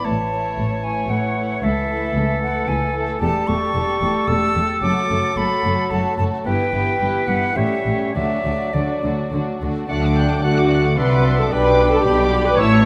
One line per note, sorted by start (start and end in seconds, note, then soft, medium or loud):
0.04 0.50 A1 medium
0.04 0.49 A2 medium
0.04 3.17 E3 soft
0.04 1.60 C#5 soft
0.04 0.85 A5 medium
0.30 0.83 A3 soft
0.30 0.82 E4 soft
0.30 0.83 C#5 soft
0.57 1.01 A1 soft
0.57 1.02 A2 medium
0.84 1.35 A3 soft
0.84 1.35 E4 soft
0.84 1.35 C#5 soft
0.84 1.11 G#5 medium
1.10 1.55 A1 medium
1.10 1.55 A2 medium
1.10 1.65 F#5 medium
1.36 1.62 A3 soft
1.36 1.62 E4 soft
1.36 1.63 C#5 soft
1.63 2.07 C#2 medium
1.63 1.89 A3 soft
1.63 1.89 E4 soft
1.63 3.18 A4 soft
1.63 1.89 A4 soft
1.63 2.41 E5 medium
1.90 2.41 A3 soft
1.90 2.42 E4 soft
1.90 2.41 A4 soft
2.15 2.60 C#2 medium
2.42 2.94 A3 soft
2.42 2.94 E4 soft
2.42 2.93 A4 soft
2.42 2.70 F#5 medium
2.68 3.13 C#2 medium
2.68 2.95 G#5 medium
2.95 3.20 A3 soft
2.95 3.21 E4 soft
2.95 3.20 A4 soft
3.20 3.30 E1 medium
3.20 3.30 E2 medium
3.20 4.66 G3 medium
3.20 3.47 A3 medium
3.20 3.46 G4 soft
3.20 6.29 A4 medium
3.20 3.48 A4 soft
3.20 3.49 A5 medium
3.47 3.56 E1 soft
3.47 3.56 E2 soft
3.47 3.74 A3 soft
3.47 3.74 G4 soft
3.47 3.74 A4 soft
3.47 4.29 C#6 medium
3.75 3.83 E1 soft
3.75 3.83 E2 medium
3.75 4.01 A3 soft
3.75 4.02 G4 soft
3.75 4.01 A4 medium
4.02 4.10 E1 medium
4.02 4.10 E2 medium
4.02 4.27 A3 soft
4.02 4.28 G4 soft
4.02 4.28 A4 soft
4.28 4.36 E1 medium
4.28 4.36 E2 medium
4.28 4.54 A3 soft
4.28 4.55 G4 soft
4.28 4.55 A4 soft
4.28 4.81 E6 medium
4.55 4.64 E1 soft
4.55 4.64 E2 soft
4.55 4.82 A3 soft
4.55 4.83 G4 soft
4.55 4.83 A4 soft
4.82 4.90 F#1 medium
4.82 4.91 F#2 medium
4.82 6.43 F#3 medium
4.82 5.08 A3 soft
4.82 5.09 F#4 medium
4.82 5.09 A4 soft
4.82 5.39 D6 medium
5.09 5.18 F#1 soft
5.09 5.18 F#2 soft
5.09 5.35 A3 soft
5.09 5.36 F#4 soft
5.09 5.35 A4 soft
5.36 5.45 F#1 medium
5.36 5.46 F#2 medium
5.36 5.62 A3 soft
5.36 5.64 F#4 soft
5.36 5.63 A4 medium
5.36 5.92 B5 medium
5.63 5.73 F#1 medium
5.63 5.73 F#2 medium
5.63 5.89 A3 soft
5.63 5.91 F#4 soft
5.63 5.91 A4 soft
5.90 5.99 F#1 medium
5.90 6.00 F#2 medium
5.90 6.17 A3 soft
5.90 6.18 F#4 soft
5.90 6.18 A4 soft
5.90 6.17 A5 medium
6.18 6.26 F#1 soft
6.18 6.27 F#2 medium
6.18 6.45 A3 soft
6.18 6.46 F#4 soft
6.18 6.46 A4 soft
6.18 6.24 A5 medium
6.45 6.54 G1 medium
6.45 6.55 G2 medium
6.45 7.58 E3 medium
6.45 6.71 B3 medium
6.45 6.71 E4 medium
6.45 6.72 G4 soft
6.45 7.59 B4 medium
6.45 7.29 G5 medium
6.72 6.81 G1 medium
6.72 6.81 G2 soft
6.72 6.99 B3 soft
6.72 6.98 E4 soft
6.72 6.99 G4 soft
6.99 7.08 G1 medium
6.99 7.08 G2 medium
6.99 7.26 B3 soft
6.99 7.27 E4 soft
6.99 7.27 G4 soft
7.27 7.36 G1 medium
7.27 7.36 G2 medium
7.27 7.55 B3 soft
7.27 7.56 E4 soft
7.27 7.55 G4 soft
7.27 7.58 F#5 medium
7.56 7.65 A1 medium
7.56 7.65 A2 medium
7.56 8.15 G3 soft
7.56 7.84 A3 soft
7.56 7.84 C#4 soft
7.56 7.85 G4 soft
7.56 8.14 C#5 soft
7.56 8.14 E5 medium
7.85 7.94 A1 medium
7.85 7.93 A2 soft
7.85 8.12 A3 soft
7.85 8.15 C#4 soft
7.85 8.15 G4 soft
8.13 8.24 D2 medium
8.13 8.22 D3 soft
8.13 9.59 F#3 medium
8.13 8.43 A3 soft
8.13 8.43 D4 soft
8.13 8.44 F#4 soft
8.13 9.58 D5 soft
8.13 8.75 E5 medium
8.44 8.52 D2 soft
8.44 8.52 D3 soft
8.44 8.73 A3 soft
8.44 8.73 D4 soft
8.44 8.73 F#4 soft
8.73 8.82 D2 soft
8.73 8.83 D3 soft
8.73 9.02 A3 soft
8.73 9.02 D4 soft
8.73 9.03 F#4 soft
8.73 9.32 D5 medium
9.03 9.12 D2 soft
9.03 9.11 D3 soft
9.03 9.32 A3 soft
9.03 9.32 D4 soft
9.03 9.32 F#4 soft
9.33 9.41 D2 medium
9.33 9.41 D3 soft
9.33 9.60 A3 soft
9.33 9.59 D4 soft
9.33 9.62 F#4 soft
9.60 9.70 D2 soft
9.60 9.69 D3 soft
9.60 9.89 A3 soft
9.60 9.88 D4 soft
9.60 9.90 F#4 soft
9.88 10.38 D2 medium
9.88 10.37 D3 medium
9.88 10.42 F#3 soft
9.88 10.41 A3 soft
9.88 10.40 D4 medium
9.88 10.42 D4 soft
9.88 10.02 D5 soft
9.88 10.01 F#5 medium
9.88 10.40 F#5 soft
9.88 10.02 A5 soft
9.88 10.03 F#6 soft
10.01 10.16 F#5 soft
10.01 10.18 D6 soft
10.14 10.29 D5 soft
10.14 10.43 G5 medium
10.14 10.29 A5 soft
10.18 10.31 F#6 soft
10.29 10.43 F#5 soft
10.29 10.44 D6 soft
10.42 10.92 D2 medium
10.42 10.92 D3 medium
10.42 11.00 A3 soft
10.42 10.97 F#4 medium
10.42 10.55 D5 soft
10.42 10.99 F#5 medium
10.42 10.98 F#5 medium
10.42 10.56 A5 soft
10.42 10.57 F#6 soft
10.46 10.97 F#3 soft
10.46 10.97 D4 medium
10.56 10.71 F#5 soft
10.56 10.71 D6 soft
10.69 10.84 D5 soft
10.69 10.84 A5 soft
10.69 10.84 F#6 soft
10.84 10.98 F#5 soft
10.84 10.98 D6 soft
10.97 11.46 C2 medium
10.97 11.47 C3 medium
10.97 11.52 F#3 medium
10.97 11.52 D4 soft
10.97 11.53 D4 medium
10.97 11.38 B4 medium
10.97 11.10 D5 soft
10.97 11.52 E5 medium
10.97 11.54 F#5 medium
10.97 11.11 A5 soft
10.97 11.11 C6 soft
11.11 11.26 F#5 soft
11.11 11.25 C6 soft
11.11 11.26 D6 soft
11.25 11.39 D5 soft
11.25 11.39 A5 soft
11.25 11.39 C6 soft
11.38 11.53 A4 medium
11.38 11.52 F#5 soft
11.38 11.52 C6 soft
11.38 11.53 D6 soft
11.51 12.00 B1 medium
11.51 12.00 B2 medium
11.51 12.06 G3 medium
11.51 12.06 D4 medium
11.51 12.05 D4 medium
11.51 11.92 B4 medium
11.51 12.60 D5 medium
11.51 11.63 G5 medium
11.51 12.05 G5 medium
11.51 11.62 B5 medium
11.51 11.66 B5 medium
11.64 11.77 G5 soft
11.64 11.77 B5 soft
11.64 11.80 D6 soft
11.78 11.88 G5 soft
11.78 11.89 B5 soft
11.78 11.94 B5 soft
11.89 12.05 A4 medium
11.89 12.03 G5 medium
11.89 12.02 B5 medium
11.93 12.06 D6 soft
12.03 12.53 B1 medium
12.03 12.53 B2 medium
12.03 12.61 D4 medium
12.03 12.44 G4 medium
12.03 12.15 G5 medium
12.03 12.58 G5 medium
12.03 12.15 B5 medium
12.03 12.19 B5 medium
12.07 12.59 G3 medium
12.07 12.59 D4 medium
12.16 12.29 G5 medium
12.16 12.29 B5 soft
12.20 12.33 D6 medium
12.31 12.43 G5 medium
12.31 12.42 B5 medium
12.31 12.46 B5 medium
12.44 12.59 B4 medium
12.44 12.58 G5 medium
12.44 12.58 B5 medium
12.44 12.59 D6 medium
12.57 12.85 A1 medium
12.57 12.85 A2 medium
12.57 12.85 E3 medium
12.57 12.85 E4 medium
12.57 12.85 C#5 loud
12.57 12.71 C#5 medium
12.57 12.85 E5 medium
12.57 12.70 A5 medium
12.57 12.85 A5 medium
12.57 12.72 E6 medium
12.69 12.84 E5 medium
12.69 12.84 C#6 medium
12.69 12.85 C#6 medium